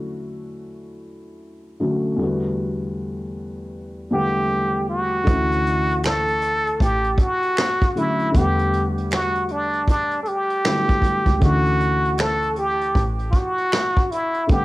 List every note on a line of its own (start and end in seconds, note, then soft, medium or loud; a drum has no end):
0.00 1.75 D3 medium
0.00 1.76 F#3 medium
0.00 1.77 A3 medium
0.00 1.78 C#4 medium
0.00 1.78 E4 medium
1.80 2.16 D3 medium
1.80 2.19 F#3 medium
1.80 2.19 A3 soft
1.80 2.20 C#4 soft
1.80 2.20 F#4 medium
2.16 4.06 E2 medium
2.16 4.07 D3 medium
2.16 4.07 G3 medium
2.16 4.08 A3 medium
2.22 4.09 B3 medium
2.22 4.09 F#4 medium
4.11 5.26 E2 medium
4.11 5.22 D3 medium
4.11 5.27 G3 medium
4.11 5.26 A3 medium
4.11 5.28 B3 medium
4.11 4.85 G4 loud
4.11 5.28 F#5 medium
4.90 6.06 F#4 loud
5.24 6.77 D2 loud
5.24 7.90 D3 medium
5.24 7.91 E3 medium
5.24 7.92 A3 medium
5.24 kick loud
5.24 closed hi-hat medium
5.29 7.93 C#4 medium
5.29 7.94 E4 medium
5.52 closed hi-hat soft
5.67 closed hi-hat medium
5.91 closed hi-hat soft
6.03 6.81 A4 loud
6.03 finger snap medium
6.03 snare loud
6.03 closed hi-hat medium
6.28 closed hi-hat soft
6.42 closed hi-hat medium
6.67 closed hi-hat soft
6.80 7.16 A1 loud
6.80 7.17 G4 loud
6.80 kick medium
6.80 closed hi-hat medium
7.04 closed hi-hat soft
7.18 8.00 F#4 loud
7.18 kick loud
7.18 closed hi-hat medium
7.42 closed hi-hat soft
7.57 finger snap medium
7.57 snare loud
7.57 closed hi-hat loud
7.81 kick loud
7.81 closed hi-hat soft
7.95 8.30 D3 soft
7.95 8.34 F#3 soft
7.95 8.33 A3 soft
7.95 8.35 C#4 soft
7.95 8.38 E4 loud
7.95 8.36 E4 medium
7.95 closed hi-hat medium
8.19 closed hi-hat soft
8.31 10.61 E2 loud
8.31 10.59 D3 medium
8.31 10.60 G3 medium
8.31 10.61 A3 medium
8.31 kick loud
8.31 closed hi-hat medium
8.36 10.62 B3 medium
8.36 8.88 G4 loud
8.36 10.63 F#5 medium
8.59 closed hi-hat soft
8.73 closed hi-hat medium
8.98 closed hi-hat soft
9.10 9.53 F#4 loud
9.10 finger snap medium
9.10 snare loud
9.10 closed hi-hat medium
9.35 closed hi-hat soft
9.48 9.89 D4 medium
9.48 closed hi-hat medium
9.73 closed hi-hat soft
9.88 10.20 D4 loud
9.88 kick medium
9.88 closed hi-hat medium
10.11 closed hi-hat soft
10.23 10.29 A4 medium
10.23 closed hi-hat medium
10.28 11.43 G4 loud
10.50 closed hi-hat medium
10.64 11.38 D3 soft
10.64 10.73 F#3 soft
10.64 11.41 A3 soft
10.64 11.43 B3 soft
10.64 11.43 E4 soft
10.64 finger snap medium
10.64 snare loud
10.64 closed hi-hat loud
10.71 11.45 G3 soft
10.88 kick loud
10.88 closed hi-hat soft
11.02 kick medium
11.02 closed hi-hat medium
11.26 11.40 C#2 medium
11.26 kick medium
11.26 closed hi-hat soft
11.39 12.92 D2 loud
11.39 14.44 D3 medium
11.39 14.45 E3 medium
11.39 14.46 A3 medium
11.39 kick loud
11.39 closed hi-hat medium
11.44 14.47 C#4 medium
11.44 14.47 E4 medium
11.44 12.22 F#4 loud
11.65 closed hi-hat soft
11.80 closed hi-hat medium
12.05 closed hi-hat soft
12.17 12.57 A4 loud
12.17 finger snap medium
12.17 snare loud
12.17 closed hi-hat medium
12.42 closed hi-hat soft
12.56 13.07 G4 loud
12.56 closed hi-hat medium
12.81 closed hi-hat soft
12.95 13.31 A1 loud
12.95 kick medium
12.95 closed hi-hat medium
13.19 closed hi-hat soft
13.31 13.37 F4 medium
13.31 kick loud
13.31 closed hi-hat medium
13.36 14.13 F#4 loud
13.58 closed hi-hat soft
13.72 finger snap medium
13.72 snare loud
13.72 closed hi-hat medium
13.96 kick loud
13.96 closed hi-hat soft
14.11 14.52 E4 medium
14.11 closed hi-hat medium
14.34 closed hi-hat soft
14.47 14.65 D3 medium
14.47 14.65 G3 medium
14.47 14.65 A3 medium
14.47 14.65 G4 loud
14.47 kick loud
14.47 closed hi-hat medium
14.52 14.65 B3 medium
14.52 14.65 F#5 medium